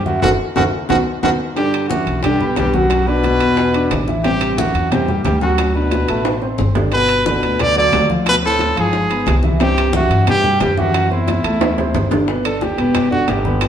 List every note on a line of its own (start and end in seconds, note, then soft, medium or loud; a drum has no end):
0.00 0.20 F#2 medium
0.06 0.21 F#2 medium
0.06 0.19 E4 medium
0.06 0.21 F#4 medium
0.06 0.19 E5 medium
0.06 high bongo soft
0.06 high conga medium
0.21 0.34 F#1 medium
0.21 0.31 F#2 medium
0.21 0.32 E4 medium
0.21 0.33 F#4 medium
0.21 0.30 F#4 loud
0.21 0.33 A4 medium
0.21 low bongo medium
0.21 high conga medium
0.21 high timbale medium
0.56 0.69 F#1 medium
0.56 0.64 F#2 medium
0.56 0.67 E4 medium
0.56 0.67 F#4 medium
0.56 0.64 F#4 medium
0.56 0.67 A4 medium
0.56 low bongo medium
0.56 high conga medium
0.56 high timbale medium
0.89 1.02 B1 medium
0.89 0.98 F#2 medium
0.89 1.00 B3 medium
0.89 1.00 D#4 medium
0.89 1.00 F#4 medium
0.89 0.98 F#4 medium
0.89 low bongo loud
0.89 high conga medium
0.89 high timbale medium
1.22 1.35 B1 medium
1.22 1.31 F#2 loud
1.22 1.33 B3 medium
1.22 1.33 D#4 medium
1.22 1.33 F#4 medium
1.22 1.31 F#4 medium
1.22 low bongo medium
1.22 high conga medium
1.22 high timbale medium
1.56 1.88 G2 medium
1.56 1.83 D3 medium
1.56 1.84 D4 medium
1.56 1.87 G4 medium
1.56 1.84 D5 medium
1.56 high bongo medium
1.56 high conga soft
1.56 high timbale medium
1.73 high bongo soft
1.73 high conga soft
1.73 high timbale medium
1.88 2.21 F#2 medium
1.88 2.17 E3 medium
1.88 2.18 E4 medium
1.88 2.20 F#4 medium
1.88 2.18 F#5 medium
1.88 high bongo medium
1.88 high conga medium
1.88 low timbale medium
2.07 2.53 B1 medium
2.07 high timbale medium
2.23 2.55 G2 medium
2.23 2.37 D3 medium
2.23 2.38 D4 medium
2.23 2.54 G4 medium
2.23 2.38 D5 medium
2.23 high bongo medium
2.23 high conga soft
2.23 low conga medium
2.23 high timbale medium
2.40 2.68 B3 medium
2.40 2.68 B4 medium
2.40 2.68 B5 medium
2.40 high bongo soft
2.40 high conga soft
2.40 low conga medium
2.56 3.35 B1 medium
2.56 2.76 G2 medium
2.56 2.76 G4 medium
2.56 high bongo medium
2.56 low bongo medium
2.56 high conga medium
2.56 high timbale medium
2.56 low timbale medium
2.73 3.09 F#2 medium
2.73 3.01 F#3 medium
2.73 3.01 F#4 medium
2.73 3.09 F#4 medium
2.73 3.02 F#5 medium
2.73 high bongo soft
2.73 high conga medium
2.90 high bongo medium
2.90 high conga soft
2.90 high timbale medium
3.07 4.08 B2 loud
3.07 3.35 D4 medium
3.07 4.08 B4 loud
3.07 3.35 D5 medium
3.07 3.35 D6 medium
3.07 high conga soft
3.24 high bongo medium
3.24 high conga medium
3.24 high timbale medium
3.24 low timbale medium
3.40 3.87 E2 medium
3.40 3.68 B3 medium
3.40 3.69 B4 medium
3.40 3.69 B5 medium
3.40 high bongo soft
3.40 high conga soft
3.40 high timbale medium
3.57 high bongo medium
3.57 high conga soft
3.74 4.02 D4 medium
3.74 4.02 D5 medium
3.74 4.02 D6 medium
3.74 high bongo soft
3.74 high conga soft
3.74 high timbale medium
3.91 4.69 A1 medium
3.91 high bongo medium
3.91 low bongo medium
3.91 high conga medium
3.91 high timbale medium
3.91 low timbale medium
4.08 4.22 E3 medium
4.08 4.22 E4 medium
4.08 4.22 E5 medium
4.08 high bongo soft
4.08 high conga medium
4.23 4.59 G2 medium
4.23 4.52 C3 medium
4.23 4.52 C4 medium
4.23 4.59 G4 loud
4.23 4.53 C5 medium
4.23 high bongo medium
4.23 high conga soft
4.23 high timbale medium
4.41 high bongo soft
4.41 high conga soft
4.41 high timbale medium
4.57 4.92 F#2 medium
4.57 4.86 E3 medium
4.57 4.86 E4 medium
4.57 4.92 F#4 medium
4.57 4.86 E5 medium
4.57 high bongo medium
4.57 high conga medium
4.57 low timbale medium
4.74 5.21 E2 medium
4.74 high timbale medium
4.91 5.24 G2 medium
4.91 5.05 C3 medium
4.91 5.05 C4 medium
4.91 5.24 G4 medium
4.91 5.06 C5 medium
4.91 high bongo medium
4.91 high conga soft
4.91 low conga medium
4.91 high timbale medium
5.08 5.35 G3 medium
5.08 5.36 G4 medium
5.08 5.36 G5 medium
5.08 high bongo soft
5.08 high conga soft
5.08 low conga medium
5.24 6.03 D2 medium
5.24 5.40 G2 medium
5.24 5.40 G4 medium
5.24 high bongo medium
5.24 low bongo medium
5.24 high conga medium
5.24 high timbale medium
5.24 low timbale medium
5.41 5.72 F#2 medium
5.41 5.69 F#3 medium
5.41 5.69 F#4 medium
5.41 5.73 F#4 medium
5.41 5.69 F#5 medium
5.41 high bongo soft
5.41 high conga medium
5.58 high bongo medium
5.58 high conga soft
5.58 high timbale medium
5.75 6.45 B2 medium
5.75 6.03 D4 medium
5.75 6.45 B4 medium
5.75 6.03 D5 medium
5.75 high conga soft
5.91 high bongo medium
5.91 high conga medium
5.91 high timbale medium
5.91 low timbale medium
6.08 6.55 A1 medium
6.08 6.36 A3 medium
6.08 6.36 A4 medium
6.08 6.37 A5 medium
6.08 high bongo soft
6.08 high conga soft
6.08 high timbale medium
6.25 high bongo medium
6.25 high conga soft
6.25 high timbale medium
6.42 6.69 C4 medium
6.42 6.70 C5 medium
6.42 6.70 C6 medium
6.42 high bongo soft
6.42 high conga soft
6.58 7.37 G1 medium
6.58 high bongo medium
6.58 low bongo medium
6.58 high conga medium
6.75 6.89 D3 medium
6.75 6.89 D4 medium
6.75 6.90 D5 medium
6.75 high bongo soft
6.75 high conga medium
6.75 low timbale medium
6.92 7.20 B2 medium
6.92 7.24 B2 medium
6.92 7.21 B3 medium
6.92 7.24 B4 loud
6.92 7.21 B4 medium
6.92 high bongo medium
6.92 high conga soft
6.92 high timbale medium
7.09 high bongo soft
7.09 high conga soft
7.09 high timbale medium
7.26 7.61 B2 medium
7.26 7.53 D3 medium
7.26 7.53 D4 medium
7.26 7.62 B4 loud
7.26 7.54 D5 medium
7.26 high bongo medium
7.26 high conga medium
7.26 low timbale medium
7.43 7.89 D2 medium
7.43 high timbale medium
7.59 7.73 B2 medium
7.59 7.77 D3 medium
7.59 7.73 B3 medium
7.59 7.74 B4 medium
7.59 7.77 D5 loud
7.59 high bongo medium
7.59 high conga soft
7.59 low conga medium
7.59 high timbale medium
7.76 8.08 D3 medium
7.76 8.04 F#3 medium
7.76 8.04 F#4 medium
7.76 8.09 D5 loud
7.76 8.04 F#5 medium
7.76 high bongo soft
7.76 high conga soft
7.93 8.71 D2 medium
7.93 high bongo medium
7.93 low bongo medium
7.93 high conga medium
7.93 high timbale medium
7.93 low timbale medium
8.09 8.37 F3 medium
8.09 8.37 F4 medium
8.09 8.37 F5 medium
8.09 high bongo soft
8.09 high conga medium
8.26 8.36 B2 medium
8.26 8.36 B4 loud
8.26 high bongo medium
8.26 high conga soft
8.26 high timbale medium
8.42 8.75 A2 medium
8.42 8.70 C4 medium
8.42 8.76 A4 medium
8.42 8.70 C5 medium
8.42 8.70 C6 medium
8.42 high conga soft
8.59 high bongo medium
8.59 high conga medium
8.59 high timbale medium
8.59 low timbale medium
8.75 9.24 G1 medium
8.75 9.41 G#2 medium
8.75 9.03 F3 medium
8.75 9.04 F4 medium
8.75 9.04 F5 medium
8.75 high bongo soft
8.75 high conga soft
8.75 high timbale medium
8.80 9.41 G#4 loud
8.93 high bongo medium
8.93 high conga soft
9.09 9.38 B3 medium
9.09 9.38 B4 medium
9.09 9.38 B5 medium
9.09 high bongo soft
9.09 high conga soft
9.09 high timbale medium
9.26 10.05 C2 medium
9.26 high bongo medium
9.26 low bongo medium
9.26 high conga medium
9.26 high timbale medium
9.26 low timbale medium
9.43 9.57 E3 medium
9.43 9.58 E4 medium
9.43 9.58 E5 medium
9.43 high bongo soft
9.43 high conga medium
9.59 9.93 G2 medium
9.59 9.88 C3 medium
9.59 9.88 C4 medium
9.59 9.93 G4 medium
9.59 9.88 C5 medium
9.59 high bongo medium
9.59 high conga soft
9.59 high timbale medium
9.76 high bongo soft
9.76 high conga soft
9.76 high timbale medium
9.93 10.26 F#2 medium
9.93 10.21 E3 medium
9.93 10.22 E4 medium
9.93 10.26 F#4 medium
9.93 10.22 E5 medium
9.93 high bongo medium
9.93 high conga loud
9.93 low timbale medium
10.10 10.57 G2 medium
10.10 high timbale medium
10.27 10.60 G2 medium
10.27 10.41 C3 medium
10.27 10.41 C4 medium
10.27 10.60 G4 loud
10.27 10.41 C5 medium
10.27 high bongo medium
10.27 high conga soft
10.27 low conga medium
10.27 high timbale medium
10.44 10.71 G3 medium
10.44 10.72 G4 medium
10.44 10.72 G5 medium
10.44 high bongo soft
10.44 high conga soft
10.44 low conga medium
10.60 11.39 F#2 medium
10.60 10.81 G2 medium
10.60 10.81 G4 medium
10.60 high bongo medium
10.60 low bongo medium
10.60 high conga medium
10.60 high timbale medium
10.60 low timbale medium
10.77 11.12 F#2 medium
10.77 11.05 E3 medium
10.77 11.05 E4 medium
10.77 11.12 F#4 medium
10.77 11.05 E5 medium
10.77 high bongo soft
10.77 high conga medium
10.94 high bongo medium
10.94 high conga soft
10.94 high timbale medium
11.11 12.08 E2 medium
11.11 11.39 C4 medium
11.11 12.08 E4 medium
11.11 11.39 C5 medium
11.11 11.39 C6 medium
11.11 high conga soft
11.28 high bongo medium
11.28 high conga medium
11.28 high timbale medium
11.28 low timbale medium
11.44 11.91 D2 medium
11.44 11.72 A3 medium
11.44 11.72 A4 medium
11.44 11.72 A5 medium
11.44 high conga soft
11.44 high timbale medium
11.61 high bongo loud
11.61 high conga soft
11.61 high timbale medium
11.78 12.05 C4 medium
11.78 12.05 C5 medium
11.78 12.06 C6 medium
11.78 low bongo medium
11.78 high conga soft
11.78 low timbale medium
11.94 12.72 G1 medium
11.94 low bongo medium
11.94 high conga medium
11.94 low timbale medium
12.11 12.25 D3 medium
12.11 12.25 D4 medium
12.11 12.25 D5 medium
12.11 low bongo medium
12.11 high conga medium
12.11 low timbale medium
12.28 12.42 B2 medium
12.28 12.42 B3 medium
12.28 12.42 B4 medium
12.28 high bongo medium
12.28 high conga soft
12.44 12.72 D3 medium
12.44 12.72 D4 medium
12.44 12.64 A4 medium
12.44 12.72 D5 medium
12.44 high bongo soft
12.44 high conga soft
12.44 high timbale loud
12.61 13.10 G4 medium
12.61 high bongo medium
12.61 high conga medium
12.61 low timbale medium
12.78 13.25 E1 medium
12.78 13.05 B2 medium
12.78 13.05 B3 medium
12.78 13.06 B4 medium
12.78 high bongo soft
12.78 high timbale medium
12.95 high bongo medium
12.95 high conga soft
12.95 low conga medium
12.95 high timbale medium
13.10 13.38 D3 medium
13.10 13.39 D4 medium
13.10 13.30 F#4 medium
13.10 13.39 D5 medium
13.10 high conga soft
13.10 low conga medium
13.28 13.68 G1 medium
13.28 13.68 G4 medium
13.28 high bongo soft
13.28 low bongo medium
13.28 high conga soft
13.28 high timbale medium
13.28 low timbale medium
13.44 13.68 B3 medium
13.44 13.68 B4 medium
13.44 13.68 B5 medium
13.44 high bongo soft
13.44 high conga medium
13.61 high bongo medium
13.61 high timbale medium